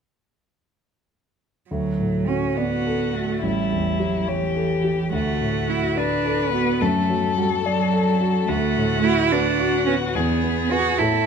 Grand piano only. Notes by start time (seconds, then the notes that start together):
1.71 D2
1.99 A2
2.28 F#4
2.57 D5
2.87 A4
3.14 F#4
3.43 A1
3.72 E2
4.00 G4
4.28 C#5
4.56 A4
4.84 G4
5.13 D2
5.41 A2
5.69 F#4
5.97 D5
6.25 A4
6.53 F#4
6.82 F#2
7.10 F#3
7.38 F#4
7.66 D5
7.93 A4
8.20 F#4
8.49 D2
8.77 A2
9.04 F#4
9.33 B4
9.60 F#4
9.88 B3
10.15 E2
10.44 B3
10.71 G#4 B4
11.00 A2